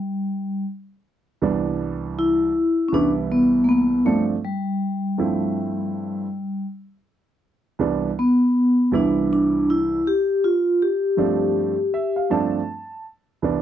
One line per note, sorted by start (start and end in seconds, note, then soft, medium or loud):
0.00 0.63 G3 medium
1.42 2.49 C2 medium
1.42 2.49 E3 medium
1.42 2.49 G3 medium
1.42 2.49 B3 medium
1.42 2.49 D4 medium
2.19 2.90 E4 loud
2.88 3.99 C2 medium
2.88 2.93 C#4 medium
2.93 4.00 E3 medium
2.93 4.00 G3 medium
2.93 4.00 B3 medium
2.93 3.11 D4 loud
2.93 4.00 E4 medium
3.31 3.64 B3 medium
3.64 3.69 A#3 medium
3.69 4.03 B3 medium
4.05 4.34 G2 medium
4.05 4.34 F3 medium
4.05 4.34 A3 medium
4.05 4.23 A3 medium
4.05 4.34 C4 medium
4.05 4.34 D4 medium
4.44 6.65 G3 medium
5.18 6.24 G2 medium
5.18 6.24 F3 medium
5.18 6.25 A3 medium
5.18 6.25 C4 medium
5.18 6.25 E4 medium
7.79 8.08 C2 medium
7.79 8.09 E3 medium
7.79 8.09 G3 medium
7.79 8.09 B3 medium
7.79 8.09 D4 medium
8.19 8.89 B3 medium
8.92 9.99 C2 medium
8.92 9.99 E3 medium
8.92 9.99 G3 medium
8.92 9.99 B3 medium
8.92 9.31 D4 medium
8.92 10.00 E4 medium
9.33 9.70 D4 medium
9.70 10.07 E4 medium
10.07 10.45 G4 loud
10.44 10.82 F4 medium
10.82 12.27 G4 medium
11.17 11.73 G2 medium
11.17 11.73 F3 medium
11.17 11.73 A3 medium
11.17 11.74 C4 medium
11.17 11.74 D4 medium
11.94 12.14 E5 medium
12.16 12.30 F5 medium
12.30 12.59 G2 medium
12.30 12.59 F3 medium
12.30 12.59 A3 medium
12.30 12.59 C4 medium
12.30 12.59 D4 medium
12.30 13.02 A5 medium
13.42 13.62 C2 medium
13.42 13.62 E3 medium
13.42 13.62 G3 medium
13.42 13.62 B3 medium
13.42 13.62 D4 medium